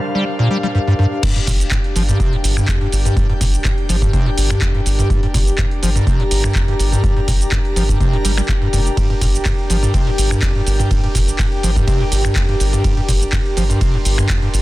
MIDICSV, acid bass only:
0, 0, Header, 1, 2, 480
1, 0, Start_track
1, 0, Key_signature, -2, "minor"
1, 0, Tempo, 483871
1, 1221, Time_signature, 4, 2, 24, 8
1, 14501, End_track
2, 0, Start_track
2, 0, Title_t, "Acid bass"
2, 0, Program_c, 0, 38
2, 149, Note_on_c, 0, 55, 73
2, 241, Note_off_c, 0, 55, 0
2, 388, Note_on_c, 0, 46, 76
2, 481, Note_off_c, 0, 46, 0
2, 501, Note_on_c, 0, 55, 75
2, 571, Note_off_c, 0, 55, 0
2, 628, Note_on_c, 0, 55, 75
2, 665, Note_off_c, 0, 55, 0
2, 741, Note_on_c, 0, 43, 83
2, 783, Note_off_c, 0, 43, 0
2, 868, Note_on_c, 0, 43, 97
2, 930, Note_off_c, 0, 43, 0
2, 982, Note_on_c, 0, 43, 101
2, 1051, Note_off_c, 0, 43, 0
2, 1222, Note_on_c, 0, 43, 85
2, 1326, Note_off_c, 0, 43, 0
2, 1349, Note_on_c, 0, 43, 105
2, 1386, Note_off_c, 0, 43, 0
2, 1462, Note_on_c, 0, 46, 99
2, 1503, Note_off_c, 0, 46, 0
2, 1702, Note_on_c, 0, 43, 84
2, 1771, Note_off_c, 0, 43, 0
2, 1942, Note_on_c, 0, 53, 80
2, 2011, Note_off_c, 0, 53, 0
2, 2069, Note_on_c, 0, 43, 101
2, 2162, Note_off_c, 0, 43, 0
2, 2182, Note_on_c, 0, 48, 82
2, 2309, Note_on_c, 0, 43, 102
2, 2324, Note_off_c, 0, 48, 0
2, 2346, Note_off_c, 0, 43, 0
2, 2548, Note_on_c, 0, 43, 100
2, 2641, Note_off_c, 0, 43, 0
2, 2661, Note_on_c, 0, 41, 82
2, 2766, Note_off_c, 0, 41, 0
2, 2789, Note_on_c, 0, 43, 76
2, 2850, Note_off_c, 0, 43, 0
2, 3028, Note_on_c, 0, 43, 104
2, 3121, Note_off_c, 0, 43, 0
2, 3268, Note_on_c, 0, 43, 100
2, 3305, Note_off_c, 0, 43, 0
2, 3381, Note_on_c, 0, 46, 99
2, 3423, Note_off_c, 0, 46, 0
2, 3621, Note_on_c, 0, 43, 81
2, 3691, Note_off_c, 0, 43, 0
2, 3861, Note_on_c, 0, 53, 80
2, 3931, Note_off_c, 0, 53, 0
2, 3988, Note_on_c, 0, 43, 102
2, 4081, Note_off_c, 0, 43, 0
2, 4101, Note_on_c, 0, 48, 81
2, 4228, Note_on_c, 0, 43, 103
2, 4243, Note_off_c, 0, 48, 0
2, 4265, Note_off_c, 0, 43, 0
2, 4468, Note_on_c, 0, 43, 99
2, 4561, Note_off_c, 0, 43, 0
2, 4581, Note_on_c, 0, 41, 83
2, 4686, Note_off_c, 0, 41, 0
2, 4709, Note_on_c, 0, 43, 79
2, 4770, Note_off_c, 0, 43, 0
2, 4948, Note_on_c, 0, 43, 103
2, 5041, Note_off_c, 0, 43, 0
2, 5061, Note_on_c, 0, 43, 84
2, 5166, Note_off_c, 0, 43, 0
2, 5188, Note_on_c, 0, 43, 104
2, 5225, Note_off_c, 0, 43, 0
2, 5301, Note_on_c, 0, 46, 97
2, 5343, Note_off_c, 0, 46, 0
2, 5541, Note_on_c, 0, 43, 85
2, 5611, Note_off_c, 0, 43, 0
2, 5781, Note_on_c, 0, 53, 76
2, 5851, Note_off_c, 0, 53, 0
2, 5908, Note_on_c, 0, 43, 104
2, 6001, Note_off_c, 0, 43, 0
2, 6021, Note_on_c, 0, 48, 84
2, 6148, Note_on_c, 0, 43, 98
2, 6163, Note_off_c, 0, 48, 0
2, 6185, Note_off_c, 0, 43, 0
2, 6388, Note_on_c, 0, 43, 101
2, 6481, Note_off_c, 0, 43, 0
2, 6501, Note_on_c, 0, 41, 88
2, 6606, Note_off_c, 0, 41, 0
2, 6628, Note_on_c, 0, 43, 76
2, 6690, Note_off_c, 0, 43, 0
2, 6868, Note_on_c, 0, 43, 102
2, 6961, Note_off_c, 0, 43, 0
2, 6981, Note_on_c, 0, 43, 85
2, 7086, Note_off_c, 0, 43, 0
2, 7108, Note_on_c, 0, 43, 104
2, 7145, Note_off_c, 0, 43, 0
2, 7221, Note_on_c, 0, 46, 98
2, 7263, Note_off_c, 0, 46, 0
2, 7460, Note_on_c, 0, 43, 80
2, 7531, Note_off_c, 0, 43, 0
2, 7700, Note_on_c, 0, 53, 75
2, 7771, Note_off_c, 0, 53, 0
2, 7828, Note_on_c, 0, 43, 102
2, 7921, Note_off_c, 0, 43, 0
2, 7941, Note_on_c, 0, 48, 83
2, 8068, Note_on_c, 0, 43, 104
2, 8083, Note_off_c, 0, 48, 0
2, 8105, Note_off_c, 0, 43, 0
2, 8181, Note_on_c, 0, 55, 79
2, 8251, Note_off_c, 0, 55, 0
2, 8308, Note_on_c, 0, 55, 80
2, 8345, Note_off_c, 0, 55, 0
2, 8421, Note_on_c, 0, 43, 85
2, 8463, Note_off_c, 0, 43, 0
2, 8549, Note_on_c, 0, 43, 103
2, 8610, Note_off_c, 0, 43, 0
2, 8661, Note_on_c, 0, 43, 102
2, 8731, Note_off_c, 0, 43, 0
2, 8902, Note_on_c, 0, 43, 86
2, 9006, Note_off_c, 0, 43, 0
2, 9028, Note_on_c, 0, 43, 106
2, 9065, Note_off_c, 0, 43, 0
2, 9141, Note_on_c, 0, 46, 101
2, 9183, Note_off_c, 0, 46, 0
2, 9381, Note_on_c, 0, 43, 81
2, 9451, Note_off_c, 0, 43, 0
2, 9621, Note_on_c, 0, 53, 79
2, 9691, Note_off_c, 0, 53, 0
2, 9749, Note_on_c, 0, 43, 99
2, 9842, Note_off_c, 0, 43, 0
2, 9862, Note_on_c, 0, 48, 82
2, 9989, Note_on_c, 0, 43, 101
2, 10004, Note_off_c, 0, 48, 0
2, 10026, Note_off_c, 0, 43, 0
2, 10229, Note_on_c, 0, 43, 100
2, 10321, Note_off_c, 0, 43, 0
2, 10341, Note_on_c, 0, 41, 85
2, 10446, Note_off_c, 0, 41, 0
2, 10468, Note_on_c, 0, 43, 75
2, 10530, Note_off_c, 0, 43, 0
2, 10709, Note_on_c, 0, 43, 103
2, 10801, Note_off_c, 0, 43, 0
2, 10821, Note_on_c, 0, 43, 87
2, 10926, Note_off_c, 0, 43, 0
2, 10949, Note_on_c, 0, 43, 106
2, 10986, Note_off_c, 0, 43, 0
2, 11061, Note_on_c, 0, 46, 102
2, 11103, Note_off_c, 0, 46, 0
2, 11301, Note_on_c, 0, 43, 79
2, 11371, Note_off_c, 0, 43, 0
2, 11541, Note_on_c, 0, 53, 78
2, 11611, Note_off_c, 0, 53, 0
2, 11668, Note_on_c, 0, 43, 101
2, 11761, Note_off_c, 0, 43, 0
2, 11781, Note_on_c, 0, 48, 86
2, 11908, Note_on_c, 0, 43, 101
2, 11923, Note_off_c, 0, 48, 0
2, 11945, Note_off_c, 0, 43, 0
2, 12149, Note_on_c, 0, 43, 105
2, 12241, Note_off_c, 0, 43, 0
2, 12261, Note_on_c, 0, 41, 86
2, 12366, Note_off_c, 0, 41, 0
2, 12388, Note_on_c, 0, 43, 75
2, 12450, Note_off_c, 0, 43, 0
2, 12628, Note_on_c, 0, 43, 101
2, 12721, Note_off_c, 0, 43, 0
2, 12741, Note_on_c, 0, 43, 86
2, 12846, Note_off_c, 0, 43, 0
2, 12868, Note_on_c, 0, 43, 108
2, 12905, Note_off_c, 0, 43, 0
2, 12981, Note_on_c, 0, 46, 102
2, 13023, Note_off_c, 0, 46, 0
2, 13221, Note_on_c, 0, 43, 79
2, 13291, Note_off_c, 0, 43, 0
2, 13461, Note_on_c, 0, 53, 77
2, 13531, Note_off_c, 0, 53, 0
2, 13588, Note_on_c, 0, 43, 102
2, 13681, Note_off_c, 0, 43, 0
2, 13700, Note_on_c, 0, 48, 84
2, 13828, Note_on_c, 0, 43, 102
2, 13843, Note_off_c, 0, 48, 0
2, 13865, Note_off_c, 0, 43, 0
2, 14068, Note_on_c, 0, 43, 105
2, 14161, Note_off_c, 0, 43, 0
2, 14308, Note_on_c, 0, 43, 77
2, 14370, Note_off_c, 0, 43, 0
2, 14501, End_track
0, 0, End_of_file